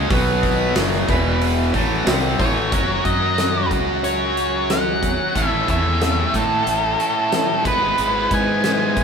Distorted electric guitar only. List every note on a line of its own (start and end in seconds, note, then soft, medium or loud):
0.10 0.75 B2 medium
0.10 0.75 F#3 medium
0.10 0.75 B3 loud
0.76 1.07 F#2 loud
0.76 1.08 C#3 medium
0.76 1.08 F#3 medium
1.08 1.73 E2 medium
1.08 1.73 B2 medium
1.08 1.73 E3 medium
1.74 2.06 A2 medium
1.74 2.06 E3 medium
1.74 2.06 A3 loud
2.08 2.39 C3 medium
2.08 2.39 G3 medium
2.08 2.39 C4 medium
2.40 2.71 A2 medium
2.40 2.72 E3 medium
2.40 2.72 A3 medium
2.73 5.33 F#3 medium
2.73 5.34 C#4 medium
2.73 5.34 F#4 medium
2.73 5.35 A#4 medium
5.35 7.63 A2 medium
5.35 7.64 A3 medium
5.35 7.64 C#4 medium
5.35 7.65 E4 loud
5.35 7.65 A4 medium
7.64 9.04 G#3 medium
7.64 9.04 B3 medium
7.64 9.04 E4 medium
7.64 9.04 B4 medium